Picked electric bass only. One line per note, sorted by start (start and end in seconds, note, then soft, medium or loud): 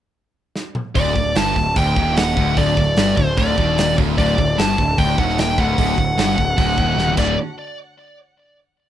0.95 1.14 D1 medium
1.16 1.35 D1 medium
1.36 1.55 G1 loud
1.56 1.75 D1 medium
1.76 1.95 D1 loud
1.96 2.34 D#1 loud
2.37 2.56 D1 medium
2.57 2.76 D1 loud
2.77 2.96 D1 medium
2.98 3.17 G1 loud
3.17 3.36 D1 medium
3.37 3.57 D1 loud
3.58 3.95 D#1 medium
3.98 4.17 D1 loud
4.18 4.37 D1 medium
4.38 4.57 D1 medium
4.58 4.77 G1 loud
4.78 4.97 D1 medium
4.98 5.17 D1 loud
5.18 5.55 D#1 medium
5.58 5.77 D1 medium
5.78 5.97 D1 loud
5.98 6.16 D1 medium
6.18 6.36 G1 loud
6.38 6.56 D1 medium
6.58 6.76 D1 loud
6.78 6.96 D#1 medium
6.96 7.15 D#1 medium
7.17 7.36 D1 medium